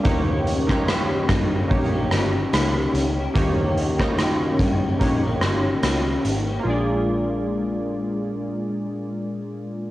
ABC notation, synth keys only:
X:1
M:4/4
L:1/16
Q:"Swing 16ths" 1/4=73
K:Bbm
V:1 name="Synth keys"
[B,E=Gd]3 [B,EGd]4 z [B,EGd]6- [B,EGd] z | [B,E=Gd]3 [B,EGd]4 z [B,EGd]6- [B,EGd] z | [B,FA=d]16 |]